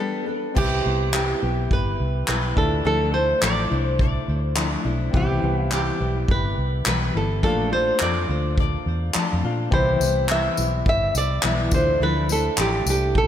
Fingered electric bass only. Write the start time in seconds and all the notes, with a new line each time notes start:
0.57 C2
0.86 C2
1.43 B1
1.71 G1
2.00 C2
2.29 B1
2.57 D2
2.85 D2
3.42 A1
3.71 C2
4.28 D2
4.85 B1
5.14 C2
5.43 C2
6.00 B1
6.29 G1
6.58 C2
6.86 B1
7.14 G1
7.43 A#1
8.01 F2
8.29 D2
8.86 E2
9.15 muted fingered electric bass stroke
9.33 F2
9.44 A#2
9.72 C2
10.00 C2
10.58 B1
10.86 G1
11.15 C2
11.44 B1
11.72 D2
12.00 D2
12.58 A1
12.86 C2